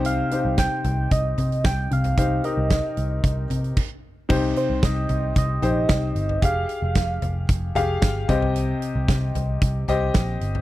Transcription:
<<
  \new Staff \with { instrumentName = "Soft synth lead" } { \time 4/4 \key c \minor \tempo 4 = 113 f''4 g''4 ees''4 g''8 f''8 | f''8 ees''2. r8 | r8 c''8 ees''4 ees''2 | f''2 r2 |
r1 | }
  \new Staff \with { instrumentName = "Grand piano" } { \time 4/4 \key c \minor <ees' g' c''>8 <ees' g' c''>2 r4. | <ees' g' c''>8 <ees' g' bes'>2 r4. | <ees' g' c''>2 r8 <ees' g' c''>4. | <g' aes' f''>2 r8 <g' aes' f''>4 <g' c'' ees''>8~ |
<g' c'' ees''>4. r4 <g' c'' ees''>4. | }
  \new Staff \with { instrumentName = "Grand piano" } { \clef bass \time 4/4 \key c \minor c4 r2 r8 c8~ | c4 r2. | c4. r2 r8 | r2. r8 c8~ |
c4 r2. | }
  \new Staff \with { instrumentName = "Picked electric bass" } { \clef bass \time 4/4 \key c \minor c,8 r16 c,8 r16 c,8 c,8 c8 c,8 c,8 | c,8 r16 c,8 r16 c,8 c,8 c8 r4 | c,8 r16 c,16 c,8 c,8 c,8 bes,,8 c,8 g,,8 | f,,8 r16 f,,16 f,,8 f,,8 f,,8 f,,8 g,,8 c,8~ |
c,8 r16 c,16 c,8 c,8 c,8 c,8 bes,,8 g,,8 | }
  \new DrumStaff \with { instrumentName = "Drums" } \drummode { \time 4/4 hh8 hh8 <hh bd sn>8 <hh tomfh>8 <hh bd>8 <hh tomfh>16 hh16 <hh bd sn>8 hh16 <hh tomfh>16 | <hh bd>8 hh8 <hh bd sn>8 hh8 <hh bd>8 <hh tomfh>16 hh16 <cymc bd>4 | <cymc bd>8 hh8 <hh bd sn>8 <hh tomfh>8 <hh bd>8 <hh tomfh>8 <hh bd sn>8 hh16 tomfh16 | <hh bd>8 hh8 <hh bd sn>8 <hh tomfh>8 <hh bd>8 <hh tomfh>8 <hh bd sn>8 <hh bd>16 tomfh16 |
hh8 hh8 <hh bd sn>8 <hh tomfh>8 <hh bd>8 <hh tomfh>8 <hh bd sn>8 hh16 tomfh16 | }
>>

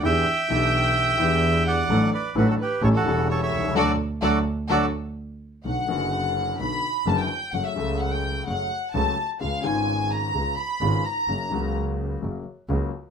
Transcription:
<<
  \new Staff \with { instrumentName = "Violin section" } { \time 4/4 \key d \major \tempo 4 = 128 g''2.~ g''8 fis''8~ | fis''8 d''8 b'16 a'16 b'8 cis''16 a'8. cis''16 e''8. | <fis' a' d''>8 r8 <fis' a' d''>8 r8 <fis' a' d''>8 r4. | \key b \minor fis''2 b''4 a''16 g''8. |
fis''16 e''8. fis''16 g''8. fis''4 a''8. r16 | eis''8 gis''4 ais''4 b''4 ais''8~ | ais''4 r2. | }
  \new Staff \with { instrumentName = "Bandoneon" } { \time 4/4 \key d \major <e'' g''>2.~ <e'' g''>8 <d'' fis''>8~ | <d'' fis''>8 <b' d''>8 <fis' b'>16 <fis' a'>16 <g' b'>8 <a' cis''>16 <fis' a'>8. <a' cis''>16 <cis'' e''>8. | <fis' a' d''>8 r8 <fis' a' d''>8 r8 <fis' a' d''>8 r4. | \key b \minor r1 |
r1 | r1 | r1 | }
  \new Staff \with { instrumentName = "Grand piano" } { \clef bass \time 4/4 \key d \major << { <e, e b d' g'>8 r8 <b,, b, e b d' g'>4. <e, e b d' g'>4. | <a,, a, fis a d' a'>8 r8 <a,, a, fis a d' a'>8 r8 <a,, a, g cis' e' a'>8 <e,, e, g cis' e' a'>4. | <d fis a>8 r8 <d fis a>8 r8 <d fis a>8 r4. | \key b \minor <b,, b, d fis b fis'>8 <fis,, fis, d fis b fis'>4. <b,, b, d fis b fis'>8 r8 <fis,, fis, d fis b fis'>8 r8 |
<fis, cis fis a fis'>8 <cis, cis fis a a'>4. <fis, cis fis a fis'>8 r8 <cis, cis fis a fis'>8 r8 | <cis, cis gis b eis'>8 <gis,, gis, cis gis b eis'>4. <cis, cis gis b eis'>8 r8 <gis,, gis, cis gis b eis'>8 r8 | <fis, cis fis ais fis'>8 <cis, cis fis ais fis'>4. <fis, cis fis ais fis'>8 r8 <cis, cis fis ais fis'>8 r8 | } \\ { r1 | r2. r8 r32 b,,32 c,32 cis,32 | r1 | r1 |
r1 | r1 | r1 | } >> }
  \new Staff \with { instrumentName = "Double bass" } { \clef bass \time 4/4 \key d \major e,8 r8 b,,4. e,4. | a,,8 r8 a,,8 r8 a,,8 e,,4 c,8 | d,8 r8 d,8 r8 d,8 r4. | \key b \minor b,,8 fis,,4. b,,8 r8 fis,,8 r8 |
fis,,8 cis,4. fis,,8 r8 cis,8 r8 | cis,8 gis,,4. cis,8 r8 gis,,8 r8 | fis,,8 cis,4. fis,,8 r8 cis,8 r8 | }
>>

